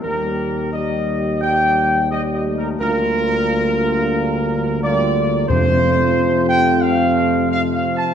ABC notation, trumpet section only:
X:1
M:4/4
L:1/8
Q:1/4=89
K:Fmix
V:1 name="Trumpet section"
B2 e2 g2 (3e e B | B6 d2 | c3 g f2 (3f f a |]